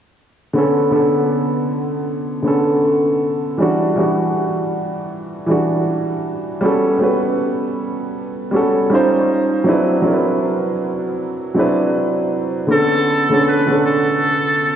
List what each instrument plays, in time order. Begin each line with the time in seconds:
0.54 upright piano D3 B3 C#4
0.59 upright piano A4
0.91 upright piano D3 B3 C#4
0.96 upright piano A4
2.42 upright piano D3 B3 C#4
2.47 upright piano A4
3.57 upright piano E3 G3 D4
3.62 upright piano F#4
3.95 upright piano E3 G3 D4
4.00 upright piano F#4
5.46 upright piano E3 G3 D4
5.51 upright piano F#4
6.61 upright piano G3 B3 C#4 F#4
6.65 upright piano A4
6.98 upright piano G3 B3 C#4 F#4
7.03 upright piano B4
8.51 upright piano G3 B3 C#4 F#4
8.56 upright piano A4
8.90 upright piano G3 C#4 D#4 F4
8.95 upright piano C5
9.64 upright piano F#3 C4 D4 E4
9.69 upright piano B4
10.02 upright piano F#3 C4 D4 E4
10.07 upright piano A#4
10.13 upright piano B4
11.54 upright piano F#3 C4 D4 E4
11.59 upright piano B4
12.67 upright piano D3 B3 C#4
12.72 muted trumpet A4, upright piano A4
13.30 upright piano D3 B3 C#4
13.34 upright piano A4
13.48 muted trumpet B4
13.67 upright piano D3 B3 C#4
13.72 upright piano A4
13.86 muted trumpet A4